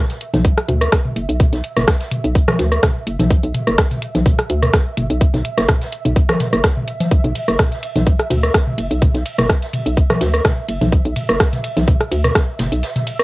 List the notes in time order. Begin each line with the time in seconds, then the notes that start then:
Already playing: E5
0.10 snare, closed hi-hat
0.21 closed hi-hat
0.34 B1, snare, closed hi-hat, high tom, low conga
0.44 kick, closed hi-hat
0.58 cross-stick, closed hi-hat
0.68 D2, closed hi-hat, high tom
0.81 cross-stick, closed hi-hat
0.92 kick, cross-stick, snare, closed hi-hat
1.05 high tom
1.16 F#1, closed hi-hat
1.29 B1, closed hi-hat
1.40 kick, closed hi-hat, high tom
1.53 B1, snare, closed hi-hat
1.64 closed hi-hat
1.77 F#1, cross-stick, snare, closed hi-hat, high tom
1.87 kick, cross-stick, snare, closed hi-hat
2.00 snare, closed hi-hat
2.11 closed hi-hat, high tom
2.24 B1, closed hi-hat
2.35 kick, closed hi-hat
2.48 cross-stick, closed hi-hat, high tom, low conga
2.59 D2, snare, closed hi-hat
2.72 cross-stick, closed hi-hat
2.82 kick, cross-stick, snare, closed hi-hat, high tom
3.07 F#1, closed hi-hat
3.19 B1, snare, closed hi-hat, high tom, low conga
3.31 kick, closed hi-hat
3.43 B1, closed hi-hat
3.54 closed hi-hat, high tom
3.67 F#1, cross-stick, closed hi-hat
3.78 kick, cross-stick, snare, closed hi-hat
3.91 snare, closed hi-hat, high tom
4.02 closed hi-hat
4.15 B1, snare, closed hi-hat, low conga
4.26 kick, closed hi-hat, high tom
4.39 cross-stick, closed hi-hat
4.50 D2, closed hi-hat
4.62 cross-stick, closed hi-hat, high tom
4.73 kick, cross-stick, snare, closed hi-hat
4.97 F#1, closed hi-hat, high tom
5.10 B1, closed hi-hat
5.21 kick, closed hi-hat
5.34 B1, snare, closed hi-hat, high tom
5.44 closed hi-hat
5.58 F#1, cross-stick, snare, closed hi-hat
5.68 kick, cross-stick, snare, closed hi-hat, high tom
5.81 snare, closed hi-hat
5.92 closed hi-hat
6.05 B1, closed hi-hat, high tom
6.16 kick, closed hi-hat
6.29 cross-stick, closed hi-hat, low conga
6.39 snare, closed hi-hat, high tom
6.53 F#1, cross-stick, closed hi-hat
6.64 kick, cross-stick, snare, closed hi-hat
6.77 high tom
6.88 closed hi-hat
7.00 snare, closed hi-hat, low conga
7.11 kick, closed hi-hat
7.24 B1, closed hi-hat, high tom
7.35 closed hi-hat, ride
7.48 F#1, cross-stick, closed hi-hat
7.59 kick, cross-stick, snare, closed hi-hat, high tom
7.72 snare, closed hi-hat
7.83 closed hi-hat, ride
7.96 B1, snare, closed hi-hat, high tom, low conga
8.07 kick, closed hi-hat
8.19 cross-stick, closed hi-hat
8.30 D2, closed hi-hat, high tom, ride
8.43 cross-stick, closed hi-hat
8.54 kick, cross-stick, snare, closed hi-hat
8.67 high tom
8.78 F#1, closed hi-hat, ride
8.91 B1, closed hi-hat
9.02 kick, closed hi-hat, high tom
9.14 B1, snare, closed hi-hat
9.26 closed hi-hat, ride
9.38 F#1, cross-stick, snare, closed hi-hat, high tom
9.49 kick, cross-stick, snare, closed hi-hat
9.62 snare, closed hi-hat
9.73 closed hi-hat, high tom, ride
9.86 B1, closed hi-hat
9.97 kick, closed hi-hat
10.10 cross-stick, closed hi-hat, high tom, low conga
10.21 D2, snare, closed hi-hat, ride
10.34 cross-stick, closed hi-hat
10.45 kick, cross-stick, snare, closed hi-hat, high tom
10.69 F#1, closed hi-hat, ride
10.81 B1, snare, closed hi-hat, high tom, low conga
10.92 kick, closed hi-hat
11.05 B1, closed hi-hat
11.16 closed hi-hat, high tom, ride
11.29 F#1, cross-stick, closed hi-hat
11.40 kick, cross-stick, snare, closed hi-hat
11.53 snare, closed hi-hat, high tom
11.64 closed hi-hat, ride
11.77 B1, snare, closed hi-hat, low conga
11.88 kick, closed hi-hat, high tom
12.01 cross-stick, closed hi-hat
12.12 D2, closed hi-hat, ride
12.24 cross-stick, closed hi-hat, high tom
12.35 kick, cross-stick, snare, closed hi-hat
12.59 F#1, snare, closed hi-hat, high tom, ride
12.72 B1, closed hi-hat
12.83 snare, closed hi-hat
12.96 snare, closed hi-hat, high tom
13.07 closed hi-hat, ride
13.19 cross-stick, closed hi-hat